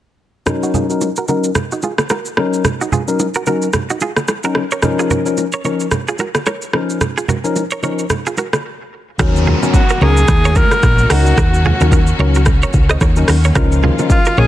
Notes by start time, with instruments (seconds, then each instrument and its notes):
0.46 tine electric piano F#3 C#4 D#4 A#4, cross-stick, low conga, shaker
0.63 clean electric guitar D#4 F#4, shaker
0.74 clean electric guitar F4 G#4, low conga, shaker
0.89 tine electric piano F#3 C#4 D#4 A#4, shaker
1.01 high bongo, shaker
1.16 clean electric guitar F#4 A#4, shaker
1.28 tine electric piano F#3 C#4 D#4 A#4, clean electric guitar F#4 A#4, low bongo, shaker
1.44 shaker
1.55 cross-stick, low conga, shaker
1.72 clean electric guitar D#4 F#4, shaker
1.82 clean electric guitar F4 G#4, high bongo, shaker
1.98 cross-stick, low bongo, shaker
2.10 clean electric guitar F#4 A#4, cross-stick, high bongo, shaker
2.25 shaker
2.37 tine electric piano F#3 C#4 D#4 A#4, cross-stick, low bongo
2.53 shaker
2.65 cross-stick, low conga, shaker
2.81 clean electric guitar D#4 F#4, shaker
2.92 clean electric guitar F4 G#4, low conga, shaker
3.08 tine electric piano F#3 C#4 D#4 A#4, shaker
3.20 high bongo, shaker
3.34 clean electric guitar F#4 A#4, shaker
3.46 tine electric piano F#3 C#4 D#4 A#4, clean electric guitar F#4 A#4, low bongo, shaker
3.62 shaker
3.73 cross-stick, low conga, shaker
3.90 clean electric guitar D#4 F#4, shaker
4.01 clean electric guitar F4 G#4, high bongo, shaker
4.17 cross-stick, low bongo, shaker
4.28 cross-stick, high bongo, shaker
4.44 tine electric piano F#3 C#4 D#4 A#4, clean electric guitar F#4 A#4, shaker
4.55 cross-stick, low bongo
4.71 clean electric guitar A#4 C#5, shaker
4.82 tine electric piano F3 C#4 D#4 A#4, cross-stick, low conga, shaker
4.99 clean electric guitar F4 G#4, shaker
5.10 clean electric guitar F#4 A#4, low conga, shaker
5.25 tine electric piano F3 C#4 D#4 A#4, shaker
5.37 high bongo, shaker
5.52 clean electric guitar A#4 C#5, shaker
5.64 tine electric piano F3 C#4 D#4 A#4, clean electric guitar A#4 C#5, low bongo, shaker
5.80 shaker
5.91 cross-stick, low conga, shaker
6.08 clean electric guitar F4 G#4, shaker
6.19 clean electric guitar F#4 A#4, high bongo, shaker
6.35 cross-stick, low bongo, shaker
6.46 clean electric guitar A#4 C#5, cross-stick, high bongo, shaker
6.62 shaker
6.73 tine electric piano F3 C#4 D#4 A#4, cross-stick, low bongo
6.90 shaker
7.01 cross-stick, low conga, shaker
7.18 clean electric guitar F4 G#4, shaker
7.28 clean electric guitar F#4 A#4, low conga, shaker
7.44 tine electric piano F3 C#4 D#4 A#4, shaker
7.56 high bongo, shaker
7.71 clean electric guitar A#4 C#5, shaker
7.82 tine electric piano F3 C#4 D#4 A#4, clean electric guitar A#4 C#5, low bongo, shaker
7.99 shaker
8.10 cross-stick, low conga, shaker
8.26 clean electric guitar F4 G#4, shaker
8.37 clean electric guitar F#4 A#4, high bongo, shaker
8.53 cross-stick, low bongo, shaker
9.19 fingered electric bass D#2, string section D#3 F#3 A#3 C#4 F#4, tine electric piano F#3 C#4 D#4 A#4, clean electric guitar F#4 A#4, kick, cross-stick, downlifter, low conga, shaker
9.36 shaker
9.47 clean electric guitar F4 G#4, low conga
9.62 tine electric piano F#3 C#4 D#4 A#4, low bongo, shaker
9.74 alto saxophone F#4, kick, high bongo, shaker
9.89 clean electric guitar F#4 A#4, shaker
10.01 fingered electric bass C#2, tine electric piano F#3 C#4 D#4 A#4, alto saxophone G#4, clean electric guitar A#4 C#5, low bongo
10.17 shaker
10.28 fingered electric bass D#2, kick, cross-stick, low conga, shaker
10.45 clean electric guitar A#4 C#5, shaker
10.55 clean electric guitar F#4 A#4, alto saxophone A#4, kick, high bongo, shaker
10.71 cross-stick, low bongo, shaker
10.83 fingered electric bass A#1, kick, cross-stick, high bongo, shaker
10.98 shaker
11.10 fingered electric bass C#2, tine electric piano F#3 C#4 D#4 A#4, alto saxophone F#4, clean electric guitar F#4 A#4, cross-stick, open hi-hat, shaker
11.26 shaker
11.37 fingered electric bass D#2, clean electric guitar F#4 A#4, kick, cross-stick, low conga, shaker
11.54 shaker
11.65 clean electric guitar F4 G#4, low conga
11.80 fingered electric bass D#2, tine electric piano F#3 C#4 D#4 A#4, clean electric guitar F#4 A#4, low bongo, shaker
11.92 clean electric guitar F#4 A#4, kick, high bongo, shaker
12.07 shaker
12.19 fingered electric bass C#2, tine electric piano F#3 C#4 D#4 A#4, clean electric guitar A#4 C#5, low bongo
12.35 clean electric guitar F#4 A#4, shaker
12.46 kick, cross-stick, low conga, shaker
12.62 clean electric guitar A#4 C#5, shaker
12.73 fingered electric bass C#2, kick, high bongo, shaker
12.89 clean electric guitar C5 D#5, cross-stick, low bongo, shaker
13.01 fingered electric bass D#2, clean electric guitar A#4 C#5, kick, cross-stick, high bongo, shaker
13.16 tine electric piano F#3 C#4 D#4 A#4, shaker
13.28 fingered electric bass D#2, clean electric guitar F#4 A#4, cross-stick, open hi-hat, shaker
13.44 clean electric guitar A#4 C#5, shaker
13.55 fingered electric bass C#2, tine electric piano F3 C#4 D#4 A#4, string section G#3 F4, clean electric guitar F4 A#4, kick, cross-stick, low conga, shaker
13.72 shaker
13.83 clean electric guitar F4 G#4, low conga
13.99 tine electric piano F3 C#4 D#4 A#4, low bongo, shaker
14.10 alto saxophone F4, kick, high bongo, shaker
14.25 clean electric guitar F#4 A#4, shaker
14.37 fingered electric bass A#1, tine electric piano F3 C#4 D#4 A#4, alto saxophone G#4, clean electric guitar A#4 C#5, low bongo